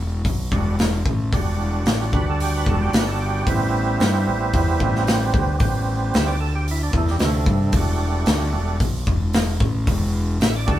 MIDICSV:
0, 0, Header, 1, 4, 480
1, 0, Start_track
1, 0, Key_signature, 1, "minor"
1, 0, Tempo, 535236
1, 1178, Time_signature, 4, 2, 24, 8
1, 9679, End_track
2, 0, Start_track
2, 0, Title_t, "Tonewheel organ"
2, 0, Program_c, 0, 16
2, 468, Note_on_c, 0, 55, 48
2, 471, Note_on_c, 0, 62, 46
2, 473, Note_on_c, 0, 66, 53
2, 679, Note_off_c, 0, 55, 0
2, 681, Note_off_c, 0, 62, 0
2, 682, Note_off_c, 0, 66, 0
2, 1199, Note_on_c, 0, 55, 53
2, 1203, Note_on_c, 0, 62, 46
2, 1218, Note_on_c, 0, 66, 60
2, 1916, Note_on_c, 0, 71, 84
2, 2020, Note_off_c, 0, 71, 0
2, 2057, Note_on_c, 0, 69, 84
2, 2152, Note_off_c, 0, 69, 0
2, 2171, Note_on_c, 0, 67, 85
2, 2269, Note_off_c, 0, 67, 0
2, 2300, Note_on_c, 0, 71, 82
2, 2394, Note_off_c, 0, 71, 0
2, 2414, Note_on_c, 0, 69, 80
2, 2511, Note_off_c, 0, 69, 0
2, 2525, Note_on_c, 0, 67, 84
2, 2626, Note_off_c, 0, 67, 0
2, 2632, Note_on_c, 0, 71, 68
2, 2739, Note_off_c, 0, 71, 0
2, 2751, Note_on_c, 0, 69, 82
2, 2859, Note_off_c, 0, 69, 0
2, 2869, Note_on_c, 0, 67, 70
2, 3077, Note_off_c, 0, 55, 0
2, 3079, Note_off_c, 0, 62, 0
2, 3087, Note_off_c, 0, 66, 0
2, 3097, Note_on_c, 0, 55, 53
2, 3099, Note_off_c, 0, 67, 0
2, 3108, Note_on_c, 0, 59, 51
2, 3110, Note_on_c, 0, 60, 58
2, 3127, Note_on_c, 0, 64, 98
2, 4519, Note_off_c, 0, 64, 0
2, 4984, Note_off_c, 0, 55, 0
2, 4990, Note_off_c, 0, 59, 0
2, 4991, Note_off_c, 0, 60, 0
2, 5012, Note_on_c, 0, 55, 57
2, 5024, Note_on_c, 0, 60, 61
2, 5034, Note_on_c, 0, 59, 50
2, 5518, Note_on_c, 0, 76, 94
2, 5622, Note_off_c, 0, 76, 0
2, 5626, Note_on_c, 0, 74, 78
2, 5701, Note_off_c, 0, 55, 0
2, 5706, Note_off_c, 0, 60, 0
2, 5712, Note_off_c, 0, 59, 0
2, 5735, Note_off_c, 0, 74, 0
2, 5745, Note_on_c, 0, 69, 86
2, 5855, Note_off_c, 0, 69, 0
2, 5877, Note_on_c, 0, 67, 82
2, 5981, Note_off_c, 0, 67, 0
2, 6020, Note_on_c, 0, 64, 78
2, 6113, Note_off_c, 0, 64, 0
2, 6127, Note_on_c, 0, 62, 82
2, 6226, Note_off_c, 0, 62, 0
2, 6256, Note_on_c, 0, 57, 97
2, 6351, Note_off_c, 0, 57, 0
2, 6375, Note_on_c, 0, 55, 85
2, 6471, Note_off_c, 0, 55, 0
2, 6493, Note_on_c, 0, 48, 74
2, 6498, Note_on_c, 0, 57, 82
2, 6923, Note_off_c, 0, 48, 0
2, 6958, Note_on_c, 0, 62, 50
2, 6960, Note_on_c, 0, 55, 58
2, 6967, Note_on_c, 0, 66, 60
2, 7631, Note_off_c, 0, 55, 0
2, 7635, Note_off_c, 0, 66, 0
2, 7642, Note_off_c, 0, 62, 0
2, 7642, Note_on_c, 0, 55, 51
2, 7646, Note_on_c, 0, 66, 56
2, 7652, Note_on_c, 0, 62, 46
2, 7865, Note_off_c, 0, 55, 0
2, 7867, Note_off_c, 0, 66, 0
2, 7871, Note_off_c, 0, 62, 0
2, 7881, Note_off_c, 0, 57, 0
2, 9337, Note_on_c, 0, 76, 93
2, 9448, Note_off_c, 0, 76, 0
2, 9475, Note_on_c, 0, 74, 82
2, 9565, Note_on_c, 0, 55, 58
2, 9569, Note_on_c, 0, 62, 51
2, 9577, Note_off_c, 0, 74, 0
2, 9581, Note_on_c, 0, 66, 64
2, 9594, Note_on_c, 0, 69, 91
2, 9679, Note_off_c, 0, 55, 0
2, 9679, Note_off_c, 0, 62, 0
2, 9679, Note_off_c, 0, 66, 0
2, 9679, Note_off_c, 0, 69, 0
2, 9679, End_track
3, 0, Start_track
3, 0, Title_t, "Fingered electric bass"
3, 0, Program_c, 1, 33
3, 0, Note_on_c, 1, 28, 76
3, 201, Note_off_c, 1, 28, 0
3, 226, Note_on_c, 1, 35, 85
3, 445, Note_off_c, 1, 35, 0
3, 466, Note_on_c, 1, 28, 94
3, 909, Note_off_c, 1, 28, 0
3, 950, Note_on_c, 1, 33, 86
3, 1168, Note_off_c, 1, 33, 0
3, 1190, Note_on_c, 1, 28, 86
3, 1632, Note_off_c, 1, 28, 0
3, 1666, Note_on_c, 1, 33, 90
3, 1887, Note_off_c, 1, 33, 0
3, 1911, Note_on_c, 1, 38, 85
3, 2353, Note_off_c, 1, 38, 0
3, 2393, Note_on_c, 1, 28, 90
3, 2611, Note_off_c, 1, 28, 0
3, 2623, Note_on_c, 1, 31, 85
3, 3069, Note_off_c, 1, 31, 0
3, 3112, Note_on_c, 1, 33, 94
3, 3554, Note_off_c, 1, 33, 0
3, 3588, Note_on_c, 1, 43, 89
3, 3809, Note_off_c, 1, 43, 0
3, 3834, Note_on_c, 1, 33, 72
3, 4052, Note_off_c, 1, 33, 0
3, 4071, Note_on_c, 1, 40, 80
3, 4290, Note_off_c, 1, 40, 0
3, 4312, Note_on_c, 1, 33, 94
3, 4754, Note_off_c, 1, 33, 0
3, 4789, Note_on_c, 1, 38, 89
3, 5009, Note_off_c, 1, 38, 0
3, 5031, Note_on_c, 1, 33, 98
3, 5473, Note_off_c, 1, 33, 0
3, 5509, Note_on_c, 1, 38, 97
3, 6188, Note_off_c, 1, 38, 0
3, 6218, Note_on_c, 1, 40, 94
3, 6442, Note_off_c, 1, 40, 0
3, 6460, Note_on_c, 1, 38, 87
3, 6683, Note_off_c, 1, 38, 0
3, 6696, Note_on_c, 1, 43, 90
3, 6921, Note_off_c, 1, 43, 0
3, 6934, Note_on_c, 1, 28, 95
3, 7382, Note_off_c, 1, 28, 0
3, 7419, Note_on_c, 1, 38, 94
3, 7642, Note_off_c, 1, 38, 0
3, 7653, Note_on_c, 1, 28, 74
3, 7878, Note_off_c, 1, 28, 0
3, 7895, Note_on_c, 1, 35, 84
3, 8119, Note_off_c, 1, 35, 0
3, 8139, Note_on_c, 1, 28, 95
3, 8584, Note_off_c, 1, 28, 0
3, 8613, Note_on_c, 1, 33, 92
3, 8837, Note_off_c, 1, 33, 0
3, 8853, Note_on_c, 1, 28, 96
3, 9300, Note_off_c, 1, 28, 0
3, 9328, Note_on_c, 1, 33, 96
3, 9555, Note_off_c, 1, 33, 0
3, 9578, Note_on_c, 1, 38, 85
3, 9679, Note_off_c, 1, 38, 0
3, 9679, End_track
4, 0, Start_track
4, 0, Title_t, "Drums"
4, 223, Note_on_c, 9, 36, 96
4, 226, Note_on_c, 9, 46, 55
4, 313, Note_off_c, 9, 36, 0
4, 316, Note_off_c, 9, 46, 0
4, 464, Note_on_c, 9, 36, 99
4, 554, Note_off_c, 9, 36, 0
4, 707, Note_on_c, 9, 46, 51
4, 717, Note_on_c, 9, 38, 101
4, 797, Note_off_c, 9, 46, 0
4, 806, Note_off_c, 9, 38, 0
4, 946, Note_on_c, 9, 36, 106
4, 1036, Note_off_c, 9, 36, 0
4, 1189, Note_on_c, 9, 36, 106
4, 1194, Note_on_c, 9, 46, 55
4, 1278, Note_off_c, 9, 36, 0
4, 1283, Note_off_c, 9, 46, 0
4, 1666, Note_on_c, 9, 46, 52
4, 1675, Note_on_c, 9, 38, 105
4, 1755, Note_off_c, 9, 46, 0
4, 1765, Note_off_c, 9, 38, 0
4, 1910, Note_on_c, 9, 36, 101
4, 2000, Note_off_c, 9, 36, 0
4, 2155, Note_on_c, 9, 46, 55
4, 2245, Note_off_c, 9, 46, 0
4, 2389, Note_on_c, 9, 36, 100
4, 2479, Note_off_c, 9, 36, 0
4, 2630, Note_on_c, 9, 46, 59
4, 2640, Note_on_c, 9, 38, 114
4, 2720, Note_off_c, 9, 46, 0
4, 2730, Note_off_c, 9, 38, 0
4, 3110, Note_on_c, 9, 36, 113
4, 3112, Note_on_c, 9, 46, 57
4, 3199, Note_off_c, 9, 36, 0
4, 3202, Note_off_c, 9, 46, 0
4, 3588, Note_on_c, 9, 46, 51
4, 3598, Note_on_c, 9, 38, 106
4, 3678, Note_off_c, 9, 46, 0
4, 3688, Note_off_c, 9, 38, 0
4, 4066, Note_on_c, 9, 46, 53
4, 4068, Note_on_c, 9, 36, 105
4, 4156, Note_off_c, 9, 46, 0
4, 4158, Note_off_c, 9, 36, 0
4, 4307, Note_on_c, 9, 36, 102
4, 4397, Note_off_c, 9, 36, 0
4, 4444, Note_on_c, 9, 38, 34
4, 4534, Note_off_c, 9, 38, 0
4, 4549, Note_on_c, 9, 46, 55
4, 4559, Note_on_c, 9, 38, 106
4, 4639, Note_off_c, 9, 46, 0
4, 4649, Note_off_c, 9, 38, 0
4, 4787, Note_on_c, 9, 36, 114
4, 4877, Note_off_c, 9, 36, 0
4, 5019, Note_on_c, 9, 46, 57
4, 5024, Note_on_c, 9, 36, 112
4, 5108, Note_off_c, 9, 46, 0
4, 5114, Note_off_c, 9, 36, 0
4, 5506, Note_on_c, 9, 46, 50
4, 5515, Note_on_c, 9, 38, 100
4, 5595, Note_off_c, 9, 46, 0
4, 5605, Note_off_c, 9, 38, 0
4, 5988, Note_on_c, 9, 46, 51
4, 6078, Note_off_c, 9, 46, 0
4, 6217, Note_on_c, 9, 36, 101
4, 6306, Note_off_c, 9, 36, 0
4, 6345, Note_on_c, 9, 38, 32
4, 6434, Note_off_c, 9, 38, 0
4, 6451, Note_on_c, 9, 46, 52
4, 6461, Note_on_c, 9, 38, 101
4, 6540, Note_off_c, 9, 46, 0
4, 6550, Note_off_c, 9, 38, 0
4, 6693, Note_on_c, 9, 36, 106
4, 6783, Note_off_c, 9, 36, 0
4, 6927, Note_on_c, 9, 46, 65
4, 6932, Note_on_c, 9, 36, 113
4, 7017, Note_off_c, 9, 46, 0
4, 7021, Note_off_c, 9, 36, 0
4, 7407, Note_on_c, 9, 46, 59
4, 7417, Note_on_c, 9, 38, 98
4, 7497, Note_off_c, 9, 46, 0
4, 7507, Note_off_c, 9, 38, 0
4, 7894, Note_on_c, 9, 36, 100
4, 7900, Note_on_c, 9, 46, 56
4, 7983, Note_off_c, 9, 36, 0
4, 7989, Note_off_c, 9, 46, 0
4, 8134, Note_on_c, 9, 36, 109
4, 8224, Note_off_c, 9, 36, 0
4, 8370, Note_on_c, 9, 46, 54
4, 8380, Note_on_c, 9, 38, 108
4, 8460, Note_off_c, 9, 46, 0
4, 8470, Note_off_c, 9, 38, 0
4, 8613, Note_on_c, 9, 36, 113
4, 8702, Note_off_c, 9, 36, 0
4, 8853, Note_on_c, 9, 36, 113
4, 8854, Note_on_c, 9, 46, 62
4, 8943, Note_off_c, 9, 36, 0
4, 8944, Note_off_c, 9, 46, 0
4, 9335, Note_on_c, 9, 46, 55
4, 9345, Note_on_c, 9, 38, 104
4, 9425, Note_off_c, 9, 46, 0
4, 9435, Note_off_c, 9, 38, 0
4, 9576, Note_on_c, 9, 36, 92
4, 9666, Note_off_c, 9, 36, 0
4, 9679, End_track
0, 0, End_of_file